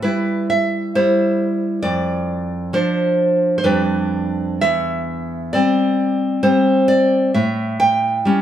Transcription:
0.02 0.95 G3 medium
0.02 0.95 E4 medium
0.02 0.48 B4 medium
0.50 0.94 E5 medium
0.95 1.80 G3 medium
0.95 1.80 E4 medium
0.95 1.80 C5 medium
1.82 2.71 F2 medium
1.82 2.70 D5 medium
2.73 3.61 F3 medium
2.73 3.61 D4 medium
2.73 3.54 C5 medium
3.58 3.65 C5 medium
3.64 4.60 F2 medium
3.64 4.59 G3 medium
3.64 4.59 D4 medium
3.64 4.58 B4 medium
4.61 5.51 E2 medium
4.61 5.50 E5 medium
5.53 6.42 G3 medium
5.53 6.43 C4 medium
5.53 6.40 D5 medium
6.43 7.30 G3 medium
6.43 7.30 C4 medium
6.43 6.87 C5 medium
6.88 7.32 D5 loud
7.34 8.23 A2 medium
7.34 7.78 E5 medium
7.80 8.42 G5 loud
8.25 8.42 G3 medium
8.25 8.42 C#4 medium

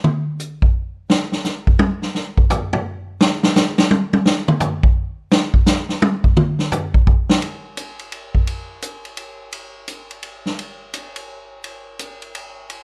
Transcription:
0.04 mid tom loud
0.40 hi-hat pedal medium
0.62 kick medium
1.10 snare medium
1.32 snare soft
1.44 snare soft
1.44 hi-hat pedal medium
1.67 kick medium
1.79 high tom loud
2.02 snare soft
2.15 snare soft
2.38 kick medium
2.50 floor tom loud
2.50 hi-hat pedal medium
2.73 floor tom medium
3.21 snare loud
3.43 snare medium
3.56 snare loud
3.56 hi-hat pedal medium
3.78 snare medium
3.91 high tom loud
4.13 high tom medium
4.26 snare loud
4.48 mid tom loud
4.60 floor tom loud
4.60 hi-hat pedal medium
4.83 kick medium
5.32 snare loud
5.54 kick medium
5.66 snare loud
5.66 hi-hat pedal medium
5.89 snare soft
6.02 high tom loud
6.24 kick medium
6.37 mid tom loud
6.59 snare soft
6.72 floor tom loud
6.72 hi-hat pedal medium
6.94 kick medium
7.07 kick medium
7.29 snare loud
7.42 ride medium
7.77 hi-hat pedal soft
7.77 ride medium
7.99 ride soft
8.12 ride medium
8.35 kick soft
8.47 ride medium
8.82 hi-hat pedal medium
8.82 ride medium
9.05 ride soft
9.17 ride medium
9.53 ride medium
9.88 hi-hat pedal soft
9.88 ride medium
10.11 ride soft
10.23 ride medium
10.46 snare soft
10.59 ride medium
10.94 hi-hat pedal soft
10.94 ride medium
11.16 ride medium
11.64 ride medium
11.99 hi-hat pedal medium
11.99 ride medium
12.22 ride soft
12.35 ride medium
12.70 ride medium

